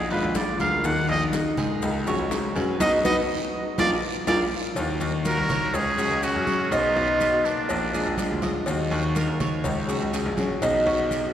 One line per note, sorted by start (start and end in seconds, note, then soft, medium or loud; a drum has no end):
0.10 0.22 G#1 medium
0.10 0.34 G#3 medium
0.10 0.35 D4 medium
0.10 0.34 F4 medium
0.10 0.58 F4 medium
0.10 0.38 B4 medium
0.10 high bongo soft
0.10 high conga soft
0.22 0.58 A#1 medium
0.34 0.58 F3 medium
0.34 0.59 G#3 medium
0.34 0.59 D4 medium
0.34 0.58 F4 medium
0.34 0.60 D5 medium
0.34 high bongo medium
0.34 low bongo medium
0.34 high conga medium
0.34 short guiro medium
0.34 maracas medium
0.59 0.83 D2 medium
0.59 0.84 G#3 medium
0.59 0.84 D4 medium
0.59 0.83 F4 medium
0.59 1.08 A#4 medium
0.59 0.87 F5 loud
0.59 high bongo soft
0.59 high conga medium
0.59 short guiro medium
0.59 maracas soft
0.83 1.08 D#2 loud
0.83 1.81 D#3 medium
0.83 1.81 A#3 medium
0.83 1.82 D#4 medium
0.83 1.82 F#4 medium
0.83 1.09 F#5 loud
0.83 high bongo medium
0.83 high conga soft
0.83 long guiro medium
0.83 maracas medium
1.09 1.32 A#1 loud
1.09 1.56 D#5 medium
1.09 1.24 D#5 loud
1.09 high conga soft
1.33 high bongo medium
1.33 high conga loud
1.33 short guiro medium
1.33 maracas medium
1.57 1.81 G#2 medium
1.57 2.05 G#4 medium
1.57 high conga soft
1.57 low conga medium
1.57 short guiro medium
1.57 maracas soft
1.82 2.06 C#2 loud
1.82 muted steel-string acoustic guitar stroke medium
1.82 high bongo medium
1.82 high conga soft
1.82 long guiro medium
1.82 maracas medium
2.07 2.19 A#1 medium
2.07 2.30 F#3 medium
2.07 2.31 C#4 medium
2.07 2.31 F#4 medium
2.07 2.31 G#4 medium
2.07 2.55 C#5 medium
2.07 high conga soft
2.07 maracas medium
2.19 2.54 C#2 medium
2.31 2.55 F#3 medium
2.31 2.55 C#4 medium
2.31 2.55 F#4 medium
2.31 2.55 G#4 medium
2.31 high bongo medium
2.31 low bongo medium
2.31 high conga soft
2.31 short guiro medium
2.31 maracas medium
2.56 2.79 F#2 medium
2.56 2.80 F#3 medium
2.56 2.80 C#4 medium
2.56 2.80 F#4 medium
2.56 2.79 G#4 medium
2.56 2.79 B4 medium
2.56 high conga medium
2.56 short guiro medium
2.56 maracas soft
2.80 2.99 B1 loud
2.80 2.96 B3 loud
2.80 2.96 D#4 loud
2.80 2.96 D#4 medium
2.80 2.96 F#4 medium
2.80 2.96 F#4 loud
2.80 2.96 B4 medium
2.80 2.93 D#5 loud
2.80 low bongo loud
2.80 high conga loud
2.80 long guiro loud
2.80 maracas loud
3.05 3.23 B1 medium
3.05 3.21 B3 loud
3.05 3.21 D#4 loud
3.05 3.21 D#4 medium
3.05 3.21 F#4 medium
3.05 3.21 F#4 loud
3.05 3.21 B4 medium
3.05 3.17 D#5 loud
3.05 low bongo loud
3.05 high conga loud
3.05 long guiro loud
3.05 maracas loud
3.78 3.97 A#1 loud
3.78 3.94 A#3 medium
3.78 3.94 D4 loud
3.78 3.94 F4 medium
3.78 3.94 F4 loud
3.78 3.94 G#4 loud
3.78 3.94 A#4 loud
3.78 3.91 D5 loud
3.78 low bongo medium
3.78 high conga loud
3.78 long guiro loud
3.78 maracas loud
4.27 4.46 A#1 loud
4.27 4.43 A#3 loud
4.27 4.43 D4 loud
4.27 4.43 F4 loud
4.27 4.43 G#4 medium
4.27 4.43 A#4 medium
4.27 4.39 D5 loud
4.27 low bongo loud
4.27 high conga loud
4.27 long guiro loud
4.27 maracas loud
4.75 4.99 D#2 loud
4.75 5.72 D#3 medium
4.75 5.73 A#3 medium
4.75 5.74 D#4 medium
4.75 5.73 F#4 medium
4.75 cowbell loud
4.75 high conga soft
4.75 long guiro medium
4.75 maracas medium
5.00 5.35 D#2 loud
5.00 5.25 F#4 medium
5.00 high conga soft
5.00 maracas medium
5.25 5.76 F#4 loud
5.25 5.49 A#4 medium
5.25 5.76 A#4 loud
5.25 cowbell medium
5.25 high conga loud
5.25 short guiro medium
5.25 maracas medium
5.37 5.72 C2 medium
5.49 5.97 C#5 medium
5.49 cowbell medium
5.49 high conga soft
5.49 low conga medium
5.49 short guiro medium
5.49 maracas soft
5.73 6.09 C#2 loud
5.73 6.24 C#4 medium
5.73 6.25 G#4 loud
5.73 muted steel-string acoustic guitar stroke medium
5.73 cowbell loud
5.73 high conga soft
5.73 long guiro medium
5.73 maracas medium
5.97 6.21 F#3 medium
5.97 6.22 C#4 medium
5.97 6.22 F#4 medium
5.97 6.23 F#4 medium
5.97 6.21 G#4 medium
5.97 cowbell medium
5.97 high conga soft
5.97 maracas medium
6.10 6.34 C#2 medium
6.22 6.46 F#3 medium
6.22 6.46 C#4 medium
6.22 6.73 C#4 medium
6.22 6.73 F#4 loud
6.22 6.46 F#4 medium
6.22 6.71 G#4 medium
6.22 6.45 G#4 medium
6.22 cowbell medium
6.22 high conga soft
6.22 short guiro medium
6.22 maracas medium
6.35 6.58 F#2 medium
6.46 6.70 F#3 medium
6.46 6.71 C#4 medium
6.46 6.71 F#4 medium
6.46 6.70 G#4 medium
6.46 cowbell medium
6.46 high conga medium
6.46 short guiro medium
6.46 maracas soft
6.70 6.94 B1 loud
6.70 7.68 B2 medium
6.70 7.68 F#3 medium
6.70 7.47 B3 medium
6.70 7.69 B3 medium
6.70 6.95 D#4 medium
6.70 7.69 D#4 medium
6.70 7.47 F4 loud
6.70 cowbell loud
6.70 high conga soft
6.70 long guiro medium
6.70 maracas medium
6.96 7.31 B1 loud
6.96 7.44 D#4 medium
6.96 high conga soft
7.20 cowbell medium
7.20 high conga medium
7.20 short guiro medium
7.20 maracas medium
7.33 7.68 B2 medium
7.45 8.43 A#3 medium
7.45 8.43 D4 medium
7.45 short guiro medium
7.45 maracas soft
7.69 8.04 A#1 loud
7.69 muted steel-string acoustic guitar stroke medium
7.69 cowbell loud
7.69 high conga soft
7.69 long guiro medium
7.69 maracas medium
7.94 8.17 G#3 medium
7.94 8.18 D4 medium
7.94 8.17 F4 medium
7.94 8.41 G#4 medium
7.94 high conga soft
7.94 maracas medium
8.06 8.29 A#1 medium
8.18 8.41 F3 medium
8.18 8.42 G#3 medium
8.18 8.42 D4 medium
8.18 8.41 F4 medium
8.18 cowbell medium
8.18 high conga medium
8.18 short guiro medium
8.18 maracas medium
8.31 8.54 D2 medium
8.42 8.67 G#3 medium
8.42 8.67 D4 medium
8.42 8.66 F4 medium
8.42 8.90 D#5 medium
8.42 cowbell medium
8.42 high conga medium
8.42 short guiro medium
8.42 maracas soft
8.66 8.90 D#2 medium
8.66 9.63 D#3 medium
8.66 9.64 A#3 medium
8.66 9.65 D#4 medium
8.66 9.64 F#4 medium
8.66 cowbell loud
8.66 high conga soft
8.66 long guiro medium
8.66 maracas medium
8.91 9.26 D#2 loud
8.91 9.15 F#4 medium
8.91 high conga soft
9.15 9.40 A#4 medium
9.15 cowbell medium
9.15 high conga loud
9.15 short guiro medium
9.15 maracas medium
9.28 9.63 D#2 medium
9.40 9.88 C#5 medium
9.40 cowbell medium
9.40 high conga soft
9.40 low conga medium
9.40 short guiro medium
9.40 maracas soft
9.64 9.99 C#2 loud
9.64 muted steel-string acoustic guitar stroke medium
9.64 cowbell loud
9.64 high conga soft
9.64 low conga medium
9.64 long guiro medium
9.64 maracas medium
9.88 10.12 F#3 medium
9.88 10.13 C#4 medium
9.88 10.13 F#4 medium
9.88 10.12 G#4 medium
9.88 cowbell medium
9.88 high conga soft
9.88 maracas medium
10.01 10.24 C#2 medium
10.13 10.37 F#3 medium
10.13 10.37 C#4 medium
10.13 10.37 F#4 medium
10.13 10.61 G#4 medium
10.13 10.37 G#4 medium
10.13 cowbell medium
10.13 high conga soft
10.13 short guiro medium
10.13 maracas medium
10.26 10.49 A#1 medium
10.37 10.61 F#3 medium
10.37 10.62 C#4 medium
10.37 10.62 F#4 medium
10.37 10.61 G#4 medium
10.37 cowbell medium
10.37 high conga medium
10.37 short guiro medium
10.37 maracas soft
10.61 10.85 B1 loud
10.61 11.33 B2 medium
10.61 11.33 F#3 medium
10.61 11.33 B3 medium
10.61 10.86 D#4 medium
10.61 11.33 D#4 medium
10.61 11.33 F#4 medium
10.61 cowbell loud
10.61 high conga soft
10.61 long guiro medium
10.61 maracas medium
10.86 11.21 B1 loud
10.86 11.33 F#4 medium
10.86 high conga soft
11.11 cowbell medium
11.11 high conga medium
11.11 short guiro medium
11.11 maracas medium
11.23 11.33 B2 medium